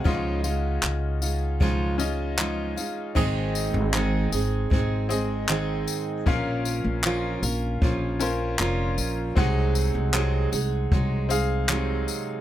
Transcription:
<<
  \new Staff \with { instrumentName = "Upright piano" } { \time 4/4 \key aes \mixolydian \tempo 4 = 77 << { ges''16 r2. r8. | r1 | r1 | r1 | } \\ { <des' f' ees''>2 r8 <des' f' ees''>4. | <c' aes' ees''>2 r8 <c' aes' ees''>4. | <des' bes' f''>2 r8 <des' bes' c''>4. | <c' aes' ges''>2 r8 <c' aes' f''>4. | } >> }
  \new Staff \with { instrumentName = "Steel-string acoustic guitar" } { \time 4/4 \key aes \mixolydian <des f aes ees' f'>8 <aes ees' f'>4 <aes ees' f'>8 <des f aes ees' f'>8 <aes ees' f'>8 <f aes ees' f'>8 <aes ees' f'>8 | <aes, ees aes c' ees' aes'>4 <aes, ees aes c' ees' aes'>8 <aes c' ees' aes'>8 <aes c' ees' aes'>8 <aes c' ees' aes'>8 <aes, ees aes c' ees' aes'>4 | <bes, f des' f' bes'>4 <bes, f des' f' bes'>8 <des' f' bes'>8 <f des' f' bes'>8 <des' f' bes'>8 <bes, f des' f' bes'>4 | <c ges aes ees' aes'>4 <c ges aes ees' aes'>8 <aes ees' aes'>8 <ges aes ees' aes'>8 <aes ees' aes'>8 <c ges aes ees' aes'>4 | }
  \new Staff \with { instrumentName = "Upright bass" } { \clef bass \time 4/4 \key aes \mixolydian des,4 des,2~ des,8 r8 | aes,,8. aes,,8. aes,,8 aes,,4. r8 | bes,,8. bes,,8. bes,,8 bes,,4 f,,8 bes,,8 | c,8. c,8. c,8 c,4. r8 | }
  \new DrumStaff \with { instrumentName = "Drums" } \drummode { \time 4/4 bd8 tamb8 hc8 tamb8 bd8 tamb8 hc8 tamb8 | <cymc bd>8 tamb8 hc8 tamb8 bd8 tamb8 hc8 tamb8 | bd8 tamb8 hc8 tamb8 bd8 tamb8 hc8 tamb8 | bd8 tamb8 hc8 tamb8 bd8 tamb8 hc8 tamb8 | }
>>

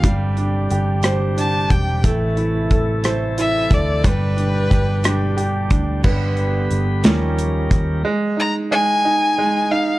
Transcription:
<<
  \new Staff \with { instrumentName = "Violin" } { \time 6/8 \key g \mixolydian \tempo 4. = 60 r2 a''8 g''8 | r2 e''8 d''8 | b'2 r4 | r2. |
\key aes \mixolydian r8 bes''8 aes''4. f''8 | }
  \new Staff \with { instrumentName = "Grand piano" } { \time 6/8 \key g \mixolydian g8 d'8 g'8 c''8 d'8 g'8 | a8 e'8 a'8 c''8 e'8 a'8 | g8 d'8 g'8 d'8 g'8 d'8 | <d g b>4. <f g des'>4. |
\key aes \mixolydian aes8 ees'8 aes8 ees'8 aes8 ees'8 | }
  \new Staff \with { instrumentName = "Tonewheel organ" } { \time 6/8 \key g \mixolydian d'2. | e'2. | d'2. | g'2. |
\key aes \mixolydian r2. | }
  \new Staff \with { instrumentName = "Tonewheel organ" } { \clef bass \time 6/8 \key g \mixolydian << { <d g g'>2. | <e a a'>2. | <d g g'>2. | <g b b'>4. <bes des' bes'>4. |
\key aes \mixolydian r2. | } \\ { c2.~ | c2. | b,2. | d4. ees4. |
r2. | } >> }
  \new Staff \with { instrumentName = "Picked electric bass" } { \clef bass \time 6/8 \key g \mixolydian g,,4 g,,4. e,,8 | a,,4 a,,4. d,8 | g,,4 g,,4. d,8 | g,,4 g,,8 ees,4 ees,8 |
\key aes \mixolydian r2. | }
  \new DrumStaff \with { instrumentName = "Drums" } \drummode { \time 6/8 <hh bd>8 hh8 hh8 <hh ss>8 hh8 <hh bd>8 | <hh bd>8 hh8 <hh bd>8 <hh ss>8 hh8 <hh bd>8 | <hh bd>8 hh8 <hh bd ss>8 <hh ss>8 hh8 <hh bd>8 | <cymc bd>8 hh8 hh8 <hh sn>8 hh8 <hh bd>8 |
r4. r4. | }
>>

